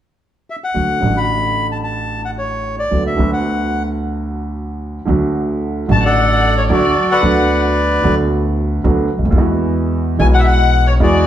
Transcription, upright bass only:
0.75 D2
1.02 A1
2.92 D2
3.18 D2
5.08 D2
5.89 A1
6.70 D2
7.23 D2
8.04 D2
8.84 D2
9.18 C#2
9.25 D2
9.32 D#2
9.39 E2
10.19 B1
11.01 E2

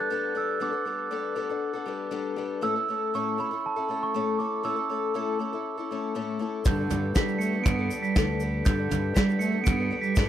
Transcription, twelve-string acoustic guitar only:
Already playing: B3 A4
0.10 G3 B3 D4 A4
0.35 G3 B3 D4 A4
0.60 G3 B3 D4 A4
0.72 B3 D4 A4
0.85 G3 B3 D4 A4
1.11 G3 B3 D4 A4
1.35 G3 B3 D4 A4
1.49 B3 D4 A4
1.73 B3 D4 A4
1.86 G3 B3 D4 A4
2.11 G3 B3 D4 A4
2.36 G3 B3 D4 A4
2.61 A2 A3 C#4 E4 A4
2.76 C#4 E4 A4
2.88 A3 C#4 E4 A4
3.14 A2 A3 C#4 E4 A4
3.38 A3 C#4 E4 A4
3.51 C#4 E4 A4
3.76 C#4 E4 A4
3.88 A3 C#4 E4 A4
4.14 A2 A3 C#4 E4 A4
4.39 A3 C#4 E4 A4
4.63 A2 A3 C#4 E4 A4
4.76 C#4 E4 A4
4.89 A3 C#4 E4 A4
5.14 A2 A3 C#4 E4 A4
5.39 A3 C#4 E4 A4
5.53 C#4 E4 A4
5.78 C#4 E4 A4
5.91 A3 C#4 E4 A4
6.15 A2 A3 C#4 E4 A4
6.39 A3 C#4 E4 A4
6.65 G3 B3 D4 A4
6.78 B3 D4 A4
6.90 G3 B3 D4 A4
7.15 G3 B3 D4 A4
7.40 G3 B3 D4 A4
7.53 B3 D4 A4
7.79 B3 D4 A4
7.90 G3 B3 D4 A4
8.16 G3 B3 D4 A4
8.41 G3 B3 D4 A4
8.66 G3 B3 D4 A4
8.77 B3 D4 A4
8.89 G3 B3 D4 A4
9.14 G3 B3 D4 A4
9.40 G3 B3 D4 A4
9.52 B3 D4 A4
9.79 B3 D4 A4
9.90 G3 B3 D4 A4
10.15 G3 B3 D4 A4

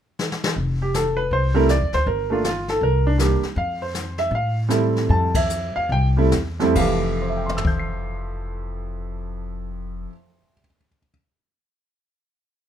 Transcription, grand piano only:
0.82 G4
0.95 A4
1.17 B4
1.33 C5
1.54 G3 A3 C4 E4 A#4
1.70 D5
1.94 C5
2.07 A#4
2.30 A3 A#3 D4 F4
2.45 F4
2.70 A4
2.83 A#4
3.07 D4
3.18 G3 A#3 D4 G4
3.58 F5
3.82 C5
4.19 E5
4.35 F5
4.69 G3 A3 C4 E4
5.10 A5
5.36 E5
5.76 F5
5.92 G5
6.17 G3 A3 C4 E4
6.60 F2 G3 A3 C4 E4
6.75 F2 E3 A3 G4 F5
7.22 C5
7.29 E5
7.37 G5
7.46 C6
7.57 E6
7.67 G6
7.79 C7

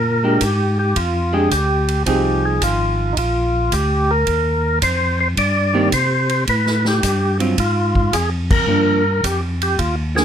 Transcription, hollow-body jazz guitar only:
0.24 G#3 D4 G4
1.33 G#3 D4 G4
2.06 F3 C4 D#4 G#4
5.73 D#3 A#3 C4 G4
7.39 F#3 C4 F4
8.68 F3 A#3 D4
10.15 F3 A#3 D4

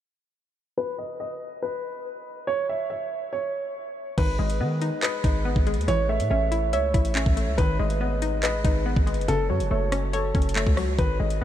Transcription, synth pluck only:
4.18 D#3
4.39 G#3
4.61 B3
4.82 D#4
5.02 D#5
5.24 D#4
5.45 B3
5.67 G#3
5.88 E3
6.09 A3
6.31 C#4
6.52 E4
6.73 E5
6.94 E4
7.15 C#4
7.37 A3
7.58 D#3
7.79 G#3
8.01 B3
8.22 D#4
8.43 D#5
8.65 D#4
8.86 B3
9.07 G#3
9.28 C#3
9.50 F#3
9.71 A3
9.92 C#4
10.13 C#5
10.35 C#4
10.56 A3
10.77 F#3
10.98 D#3
11.20 G#3

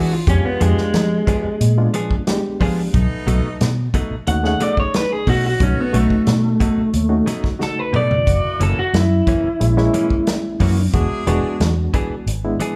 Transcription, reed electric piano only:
Already playing: G#3 B3 D4 F#4
0.28 G#3 B3 D4 G4
0.61 G#3 B3 D4 G4
1.78 G#3 B3 D4 F4
2.27 G#3 B3 D4 G4
4.27 A3 C#4 D#4 F#4
4.43 A3 C#4 D#4 G#4
5.60 A3 C#4 D#4 F#4
5.93 A3 C#4 D#4 F#4
7.09 A3 C#4 D#4 F#4
7.59 C#3 A3 D#4 F#4
9.60 G#3 A#3 C#4 E4
9.77 G#3 A#3 C#4 E4
10.94 G#3 B3 D4 F#4
11.27 G#3 B3 D4 F#4
12.45 G#3 B3 D4 E4

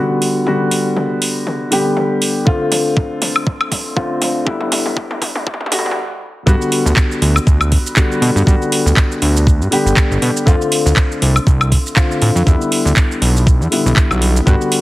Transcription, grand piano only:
Already playing: D3 G3 B3 F#4
0.46 D3 G3 B3 F#4
1.71 D3 G3 B3 G4
2.46 D3 A3 C4 F4
3.96 D3 A3 C4 F4
4.45 D3 G3 B3 E4
5.71 D3 G3 B3 F#4
6.46 D3 G3 B3 F#4
7.96 D3 G3 B3 F#4
8.46 D3 G3 B3 F#4
9.71 D3 G3 B3 G4
10.46 D3 A3 C4 F4
11.96 D3 A3 C4 F4
12.46 D3 G3 B3 E4
13.71 D3 G3 B3 E4
14.46 D3 G3 B3 F#4

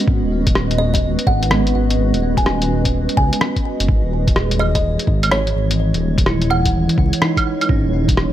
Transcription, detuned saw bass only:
0.07 G#1
0.23 D#1
1.27 G#1
1.75 G#1
1.98 G#1
2.14 D#1
3.17 C#2
3.80 F#1
4.04 D#1
5.07 G#1
5.55 G#1
5.79 G#1
5.94 D#1
6.98 C#2
7.69 G#1
7.84 D#1

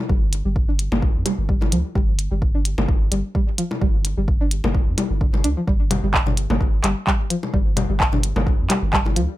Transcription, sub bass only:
0.09 G1
0.45 G1
0.92 G1
1.15 G2
1.38 G1
1.72 D2
1.95 G1
2.31 G1
2.78 G1
2.88 G1
3.12 G1
3.81 G1
4.17 G1
4.64 G1
4.87 G2
5.11 G1
5.44 D2
5.67 G1
6.04 G1
6.50 G1
6.60 G1
6.84 G1
7.54 G1
7.90 G1
8.36 G1
8.59 G2
8.83 G1
9.16 D2

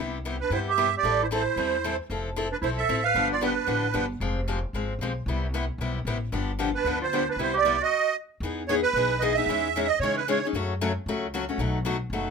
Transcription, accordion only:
0.41 B4
0.53 C5
0.70 E5
0.98 D5
1.23 C5
1.35 C5
2.52 B4
2.64 C5
2.77 E5
3.04 F5
3.32 D5
3.43 B4
6.75 B4
7.03 C5
7.30 B4
7.42 C5
7.57 D5
7.83 D#5
8.68 C#5
8.83 B4
9.20 D#5
9.34 E5
9.88 D#5
10.00 C#5
10.17 B4
10.29 C#5

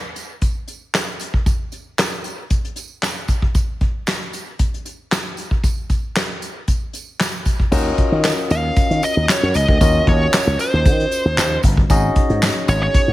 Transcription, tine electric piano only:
7.71 C#4 F4 F#4 A#4 D#5
9.81 C#4 F4 F#4 A#4 D#5
11.89 C#4 D#4 F#4 G#4 D#5

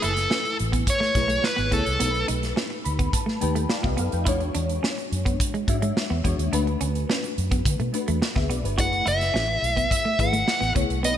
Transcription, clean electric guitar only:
0.02 E4
0.30 C#4
0.44 muted clean electric guitar stroke
0.72 B3
1.00 A3
1.15 muted clean electric guitar stroke
1.28 A3
1.42 muted clean electric guitar stroke
1.56 B3
1.71 B3
2.00 B3
2.14 muted clean electric guitar stroke
2.28 D#4
2.56 C#4
2.70 muted clean electric guitar stroke
2.99 B3
3.26 A3
3.41 muted clean electric guitar stroke
3.55 A3
3.69 muted clean electric guitar stroke
3.83 B3
3.97 B3
4.25 E4
4.40 muted clean electric guitar stroke
4.55 D4
4.83 C#4
4.98 muted clean electric guitar stroke
5.25 B3
5.54 G#3
5.68 muted clean electric guitar stroke
5.82 G#3
5.97 muted clean electric guitar stroke
6.10 B3
6.24 B3
6.53 D4
6.67 muted clean electric guitar stroke
6.81 C#4
7.09 C#4
7.24 muted clean electric guitar stroke
7.51 B3
7.80 A3
7.94 muted clean electric guitar stroke
8.08 A3
8.22 muted clean electric guitar stroke
8.36 B3
8.50 B3
8.78 F#4
8.92 muted clean electric guitar stroke
9.06 E4
9.34 C#4
9.48 muted clean electric guitar stroke
9.76 B3
10.05 A3
10.19 muted clean electric guitar stroke
10.33 A3
10.47 muted clean electric guitar stroke
10.61 B3
10.75 B3
11.03 B3

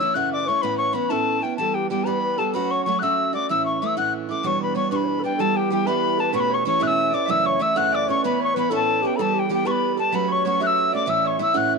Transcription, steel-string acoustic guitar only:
0.00 E3 A3 C#4 E4
0.15 F#2 C#3 E3 A3 C#4 E4
0.48 E3 A3 C#4 E4
0.63 A2 E3 B3 C#4 E4
0.93 E3 B3 C#4 E4
1.10 A2 E3 B3 C#4 E4
1.42 B3 C#4 E4
1.58 E3 G3 B3 G4
1.90 E3 G3 B3 G4
2.06 E3 G3 B3 G4
2.38 G3 B3 G4
2.54 F#3 A3 C#4 F#4
2.86 F#3 A3 C#4 F#4
3.02 F#3 A3 C#4 F#4
3.33 A3 C#4 F#4
3.49 A2 E3 A3 C#4 E4
3.82 E3 A3 C#4 E4
3.97 A2 E3 A3 C#4 E4
4.29 A3 C#4 E4
4.43 E2 B2 E3 G3 B3 D4
4.75 E3 G3 B3 D4
4.91 E2 B2 E3 G3 B3 D4
5.24 E3 G3 B3 D4
5.39 E3 G3 B3 E4
5.70 E3 G3 B3 E4
5.87 E3 G3 B3 E4
6.19 G3 B3 E4
6.33 E2 B2 E3 A3 C#4 E4
6.65 E3 A3 C#4 E4
6.80 E2 B2 E3 A3 C#4 E4
7.13 E3 A3 C#4 E4
7.28 F#2 C#3 E3 A3 C#4 E4
7.59 E3 A3 C#4 E4
7.76 F#2 C#3 E3 A3 C#4 E4
8.08 E3 A3 C#4 E4
8.24 A2 E3 B3 C#4 E4
8.56 E3 B3 C#4 E4
8.71 A2 E3 B3 C#4 E4
9.03 B3 C#4 E4
9.19 E3 G3 B3 G4
9.49 E3 G3 B3 G4
9.65 E3 G3 B3 G4
9.97 G3 B3 G4
10.12 F#3 A3 C#4 F#4
10.45 F#3 A3 C#4 F#4
10.60 F#3 A3 C#4 F#4
10.92 A3 C#4 F#4
11.06 A2 E3 A3 C#4 E4
11.39 E3 A3 C#4 E4
11.54 A2 E3 A3 C#4 E4

